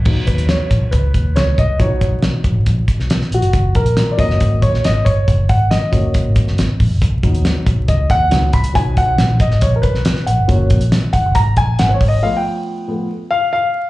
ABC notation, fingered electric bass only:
X:1
M:4/4
L:1/16
Q:1/4=138
K:B
V:1 name="Fingered electric bass" clef=bass
B,,,2 D,,3 z A,,, B,,, C,,2 D,,2 C,,2 =C,,2 | B,,,3 B,,,2 z A,,, G,,, A,,,2 B,,,3 z A,,, =G,,, | F,,,2 A,,,3 z E,,, F,,, G,,,2 A,,,2 G,,,2 =G,,,2 | F,,,2 G,,,3 z F,,, E,,, F,,, G,,, z F,,, G,,, z A,,, F,,, |
B,,,2 D,,3 z A,,, B,,, C,,2 D,,2 C,,2 =C,,2 | B,,,2 B,,,2 A,,,3 G,,, A,,,2 B,,,3 z A,,, =G,,, | F,,,2 A,,,3 z E,,, F,,, G,,,2 A,,,2 G,,,2 G,,,2 | z16 |]